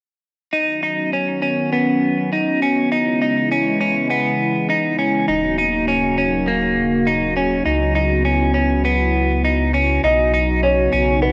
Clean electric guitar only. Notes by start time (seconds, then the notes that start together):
0.53 D#4
0.83 D#4
1.13 C#4
1.42 C#4
1.73 B3
2.32 D#4
2.62 C#4
2.92 D#4
3.22 D#4
3.52 C#4
3.81 C#4
4.10 B3
4.70 D#4
4.99 C#4
5.28 D#4
5.58 D#4
5.88 C#4
6.18 C#4
6.48 A#3
7.07 D#4
7.37 C#4
7.66 D#4
7.95 D#4
8.25 C#4
8.54 C#4
8.85 B3
9.45 D#4
9.74 C#4
10.04 D#4
10.34 D#4
10.63 C#4
10.93 C#4
11.22 B3